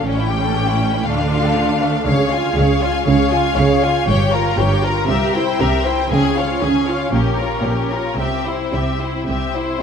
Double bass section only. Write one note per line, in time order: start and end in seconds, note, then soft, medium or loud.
0.05 1.04 A1 medium
1.06 2.06 D2 medium
2.06 2.48 C#2 medium
2.56 2.98 C#2 medium
3.06 3.49 C#2 medium
3.57 4.00 C#2 medium
4.07 4.50 G1 medium
4.57 5.00 G1 medium
5.08 5.51 C2 medium
5.59 6.02 C2 medium
6.11 6.53 C#2 medium
6.61 7.04 C#2 medium
7.11 7.55 A#1 medium
7.64 8.09 A#1 medium
8.18 8.64 C2 medium
8.73 9.19 C2 medium
9.27 9.72 C2 soft